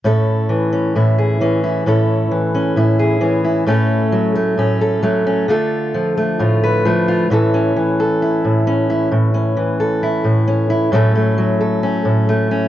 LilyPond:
\new Staff \with { instrumentName = "Steel-string acoustic guitar" } { \time 4/4 \key a \major \tempo 4 = 132 << { <cis' e' a'>4. cis'8 e'8 gis'8 cis'8 e'8 | <cis' e' a'>4. cis'8 e'8 gis'8 cis'8 e'8 | <a cis' a'>4. a8 cis'8 a'8 a8 cis'8 | <a f' a'>4. a8 f'8 b'8 a8 f'8 |
<e cis' e' a'>8 cis'4 a'8 e'4 cis'8 e'8 | r8 cis'4 a'8 e'4 cis'8 e'8 | <fis a cis' a'>8 a4 a'8 cis'4 a8 cis'8 | } \\ { a,4 e4 a,4 e4 | a,4 e4 a,4 e4 | a,4 fis4 a,4 fis4 | d4 f4 a,4 f4 |
a,4 e4. a,4. | a,4 e4. a,4. | a,4 fis4. a,4. | } >> }